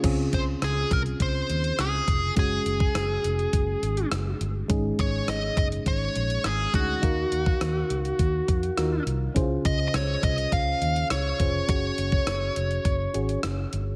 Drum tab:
CC |x---------------|----------------|----------------|----------------|
HH |x-x-x-xxx-xxx-x-|x-x-x-xxx-xxx-x-|x-x-x-xxx-xxx-x-|x-x-x-xxx-xxx-x-|
SD |----r-------r---|----r-------r---|----r-------r---|----r-------r---|
BD |o-o---o-o-----o-|o--o----o-------|o-o---o-o-----o-|o--o----o-o-----|

CC |----------------|----------------|
HH |x-x-x-xxx-xxx-x-|x-x-x-xxx-xxx-x-|
SD |----r-------r---|----r-------r---|
BD |o-o---o-o-----o-|o--o----o-------|